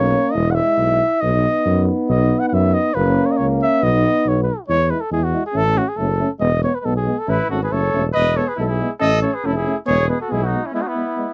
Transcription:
Already playing: B1 A#3 C#4 C#5
0.32 E1 E4 D#5
0.36 G#3
0.51 E5 F#5
0.77 B1
1.21 B1 B3 D#4 D#5
1.66 F#2
2.09 B1 D#5
2.39 F#5
2.48 F#5
2.52 F#2 E5
2.74 D#5
2.94 F#1 A#3 C#4 B4
3.26 C#5
3.32 D#5
3.37 C#2 C#5
3.63 E5
3.81 B1 B3 D#4 D#5
4.25 B1 C#5
4.43 B4
4.68 E2 G#3 E4 C#5
4.89 G#3 E4 B4
5.01 A4
5.11 E2 G#3 E4 G#4
5.24 F#4
5.33 G#3 E4
5.46 G#4
5.53 A1 A3 C#4 A4
5.76 A3 C#4 F#4
5.89 G#4
5.96 F#1 A3 C#4 A4
6.19 A3 C#4
6.40 E1 G#3 B3 D#5
6.62 G#3 B3 C#5
6.75 B4
6.80 G#3 B4
6.85 B1 B3 A4
6.97 G#4
7.07 G#3 B3
7.19 A4
7.28 A1 A3 C#4 E4 B4
7.48 G#1 A3 C#4 F#4 A4
7.63 G#4 B4
7.70 F#1 A3 C#4 A4 C#5
7.93 E1 A3 C#4
8.13 E1 G#3 B4 D#5
8.17 B3
8.36 G#3 B3 A4 C#5
8.46 G#4 B4
8.56 B1 G#3 B3 E4 A4
8.66 E4
8.70 G#4
8.79 G#3 B3
9.00 A1 A3 C#4 A4 D#5
9.22 A3 C#4 A4 C#5
9.33 G#4 B4
9.44 F1 A3 C#4 E4 A4
9.56 E4 G#4
9.65 A3 C#4
9.86 E1 G#3 B3 G#4 C#5
10.08 G#3 B3 G#4 B4
10.21 F#4 A4
10.29 B1 G#3 B3 E4 G#4
10.44 D#4 F#4
10.50 G#3 B3
10.64 C#4 E4
10.72 G#3 B3 E4
10.81 D#4 F#4
10.87 B3 E4
10.95 G#3 B3
11.15 G#3 B3

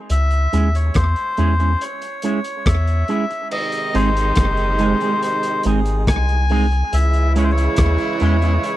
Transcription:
0.10 C#2 E5, closed hi-hat
0.30 closed hi-hat
0.53 D#2 G#3 C#4 E4 G#4, closed hi-hat
0.75 C#5, closed hi-hat
0.94 E2 C5, kick, cross-stick, closed hi-hat
1.16 closed hi-hat
1.37 E2 G#3 C#4 E4 G#4, closed hi-hat
1.59 G#3 C#4 E4 G#4, closed hi-hat
1.81 C#5, closed hi-hat
2.02 closed hi-hat
2.22 G#3 C#4 E4 G#4, closed hi-hat
2.44 closed hi-hat
2.66 E2 E5, kick, cross-stick, closed hi-hat
2.87 closed hi-hat
3.08 G#3 C#4 E4 G#4, closed hi-hat
3.30 muted clean electric guitar stroke, closed hi-hat
3.51 C3 D#3 G#3 D#4 D#5, crash
3.72 closed hi-hat
3.94 G#1 G#3 C4 D#4 G#4 C5, closed hi-hat
4.17 closed hi-hat
4.35 F#1, kick, cross-stick, closed hi-hat
4.57 closed hi-hat
4.79 G#3 C4 D#4 G#4, closed hi-hat
5.01 G#3 C4 D#4 G#4, closed hi-hat
5.22 C5, closed hi-hat
5.43 closed hi-hat
5.63 G#1 G#3 C4 D#4 G#4, closed hi-hat
5.85 closed hi-hat
6.07 C2 G#5, kick, cross-stick, closed hi-hat
6.29 closed hi-hat
6.49 G#3 C4 D#4 G#4, open hi-hat
6.72 muted clean electric guitar stroke, closed hi-hat
6.92 C#2 C#3 E3 G#3 E4 E5, closed hi-hat
7.13 closed hi-hat
7.36 G#3 C#4 E4 G#4 C#5, closed hi-hat
7.44 C5
7.52 C#5
7.57 closed hi-hat
7.76 D#2, kick, cross-stick, closed hi-hat
7.98 closed hi-hat
8.20 E2 G#3 C#4 E4 G#4, closed hi-hat
8.42 G#3 C#4 E4 G#4, closed hi-hat
8.63 C#5, closed hi-hat

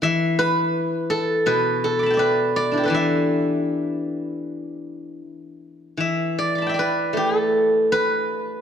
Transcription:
0.02 E3 E5
0.39 B4
1.10 A4
1.46 B2 B4
1.84 A4
1.99 B5 D6
2.06 A5
2.10 E5 G5
2.17 B4 D5
2.56 D5
2.72 D4 E4
2.78 G4
2.84 A4 B4
2.88 E3 D5
2.94 E5
5.97 E3 E5
6.39 D5
6.55 B5 D6
6.62 A5
6.67 E5 G5
6.74 D5
6.79 B4
7.13 A3 G4
7.38 A4
7.92 B4

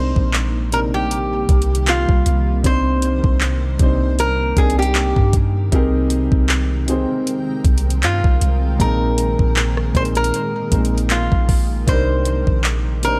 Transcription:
Already playing: C2 C3 D#3 G3 A#3 C4 D4 D#4 A#4 C5
0.16 A#1, kick
0.33 clap, closed hi-hat
0.71 C3 C4 D4 D#4 A#4, closed hi-hat
0.94 G4
1.11 closed hi-hat
1.49 C2, kick, closed hi-hat
1.62 closed hi-hat
1.75 closed hi-hat
1.87 F4, clap, closed hi-hat
2.09 C2, kick
2.26 C2, closed hi-hat
2.63 C2 C3 C4 D4 D#4 C5, kick, closed hi-hat
3.02 closed hi-hat
3.24 C2, kick
3.41 clap, closed hi-hat
3.79 C2 C3 C4 D4 D#4 C5, kick, closed hi-hat
4.19 A#4, closed hi-hat
4.56 C2 C3 C4 D4 D#4 G#4 A#4, kick, closed hi-hat
4.70 closed hi-hat
4.79 G4, closed hi-hat
4.95 clap, closed hi-hat
5.16 G2, kick
5.33 kick, closed hi-hat
5.72 C2 C3 G#3 C4 D#4 G4 G#4 A#4 G5, kick, closed hi-hat
6.10 closed hi-hat
6.32 C2, kick
6.49 clap, closed hi-hat
6.86 C3 C4 D#4 G4 G#4 C5, closed hi-hat
7.27 closed hi-hat
7.65 C2, kick, closed hi-hat
7.78 closed hi-hat
7.90 closed hi-hat
8.03 G2 F4, clap, closed hi-hat
8.24 C2, kick
8.41 C2, closed hi-hat
8.79 A#1 A#2 G#3 A#3 C4 D#4 A#4, kick, closed hi-hat
9.18 closed hi-hat
9.39 A#1, kick
9.56 clap, closed hi-hat
9.77 cross-stick
9.94 A#1 A#2 G#3 C4 D#4 A#4 C5, kick, closed hi-hat
10.05 closed hi-hat
10.15 A#4, closed hi-hat
10.24 closed hi-hat
10.34 closed hi-hat
10.71 A#1 A#2 G#3 C4 D#4 A#4, kick, closed hi-hat
10.85 closed hi-hat
10.98 closed hi-hat
11.10 F4, clap, closed hi-hat
11.32 A#1, kick
11.49 kick, open hi-hat
11.87 C2 C3 G3 C4 D4 D#4 A#4 C5, kick, closed hi-hat
12.25 closed hi-hat
12.47 A#1, kick
12.64 clap, closed hi-hat
13.03 C3 C4 D4 D#4 A#4 C5, closed hi-hat

